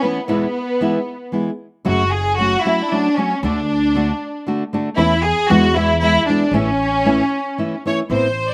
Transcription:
0.03 E3 A3 B3 C#4 E4
0.28 E2 B2 E3 G#3 B3 E4
0.81 E3 G#3 B3 E4
1.32 E3 G#3 B3 E4
1.85 F#1 F#2 C#3 F#3 A3 C#4 F#4
2.13 G#4
2.37 F#3 A3 C#4 F#4
2.64 F#3 A3 C#4 E4 F#4
2.90 F#3 A3 C#4 D4 F#4
3.18 F#3 A3 C#4 F#4
3.43 D2 D3 A3 D4 F#4
3.95 D3 A3 D4 F#4
4.47 D3 A3 D4 F#4
4.73 D3 A3 D4 F#4
4.97 E2 E3 A3 C#4 E4
5.24 G#4
5.48 E2 E3 G#3 B3 E4 F#4
5.75 E3 G#3 B3 E4
6.01 E3 G#3 B3 E4
6.26 E3 G#3 B3 D4 E4
6.51 A1 A2 E3 A3 C#4 E4
7.05 E3 A3 C#4 E4
7.58 E3 A3 C#4 E4
7.86 E3 A3 C#4 E4 C#5
8.10 A1 A2 E3 B3 C4 E4 C5
8.51 D5

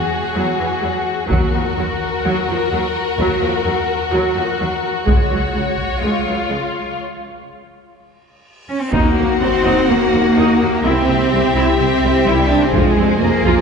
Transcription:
Already playing: F#4 G#4
0.35 E2 F#3
0.59 E2 E3
0.82 E2 F#3
1.29 D#2 F#3 F#4 A#4, taiko
1.53 D#2 F3
1.78 D#2 F#3
2.25 D#2 F#3
2.48 D#2 F3
2.71 D#2 F#3
3.17 D#2 F#3
3.41 D#2 F3
3.65 D#2 F#3
4.12 D#2 F#3
4.36 D#2 F3
4.59 D#2 F#3
5.06 C#2 G#3 C#5, taiko
5.31 C#2 F#3
5.54 C#2 G#3
5.78 taiko
6.02 C#2 G#3 F4
6.26 C#2 F#3
6.49 C#2 G#3
6.98 reverse cymbal
8.69 C#4
8.82 C4
8.93 D#2 A#3 D#4 F#4 F#5, taiko, sub drop
9.17 D#2 A#3
9.40 D#2 F#3 C4
9.64 D#2 D#4
9.88 D#2 A#3
10.12 D#2 F#3
10.36 D#2 D#4
10.60 D#2 A#3
10.83 C2 C4 E4 G4 E5
11.07 C2 C4
11.31 C2 G3
11.54 C2 E4
11.78 C2 C4
12.01 C2 G3
12.25 C2 G3 E4
12.48 C2 C4 D4
12.62 C4
12.72 F1 F2 G#3 F4 G#4 C5, taiko
12.95 F1 F2 C4
13.19 F1 F2 G#3 A#3
13.43 F1 F2 F4, taiko

